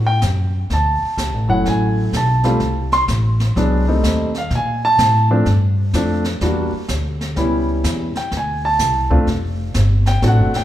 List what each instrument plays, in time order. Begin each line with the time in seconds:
Already playing: upright bass A2
0.07 grand piano G5
0.22 upright bass F#2, kick, snare, hi-hat pedal
0.70 upright bass D2, grand piano A5, brush sweep, kick, snare
1.03 muted upright bass stroke
1.17 upright bass C#2, kick, snare, hi-hat pedal
1.34 upright bass A1
1.48 upright bass F#1, grand piano F#3 A3 C#4 E4 F#5
1.65 upright bass A1, grand piano G#5, brush sweep, kick, snare
2.13 upright bass B1, grand piano A5, kick, snare, hi-hat pedal
2.43 grand piano G3 A3 C4 F4, snare
2.60 upright bass C2, brush sweep, kick, snare
2.92 grand piano C6, snare
3.08 upright bass A1, kick, snare, hi-hat pedal
3.40 snare
3.56 upright bass C2, grand piano F#3 G#3 B3 D4, brush sweep, kick, snare
3.88 grand piano G3 A3 C4 D#4
4.03 upright bass D#2, kick, snare, hi-hat pedal
4.34 grand piano F5, snare
4.50 upright bass A#2, brush sweep, kick, snare
4.55 grand piano G#5
4.85 grand piano A5
4.98 upright bass A2, kick, snare, hi-hat pedal
5.31 grand piano F3 A3 C4 D4
5.46 upright bass G2, brush sweep, kick, snare
5.93 upright bass F2, grand piano F3 A3 C4 D4, kick, snare, hi-hat pedal
6.24 snare
6.41 upright bass E2, grand piano G3 A#3 D4 F#4, brush sweep, kick, snare
6.72 muted upright bass stroke
6.88 upright bass D2, kick, snare, hi-hat pedal
7.21 snare
7.36 upright bass C#2, grand piano G3 B3 C#4 E4, brush sweep, kick, snare
7.84 upright bass E2, kick, snare, hi-hat pedal
8.15 grand piano G5, muted upright bass stroke, snare
8.31 upright bass D2, brush sweep, kick, snare
8.37 grand piano G#5
8.65 grand piano A5
8.79 upright bass C2, kick, snare, hi-hat pedal
9.10 grand piano A3 C4 D4 F4, kick
9.27 upright bass F1, brush sweep, kick, snare
9.74 upright bass G1, kick, snare, hi-hat pedal
10.06 grand piano G5, snare
10.22 upright bass A1, grand piano A3 C4 D4 F#4, brush sweep, kick, snare
10.28 grand piano F#5
10.39 upright bass F#1
10.54 upright bass D1, grand piano G5, snare